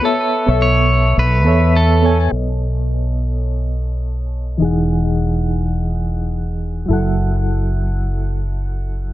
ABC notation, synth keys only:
X:1
M:4/4
L:1/16
Q:"Swing 16ths" 1/4=105
K:Bmix
V:1 name="Synth keys"
[B,Ace]3 [B,Ace] z6 [B,Ace] z3 [B,Acg]2 | [B,Ad]16 | [E,DGf]16 | [F,EAf]16 |]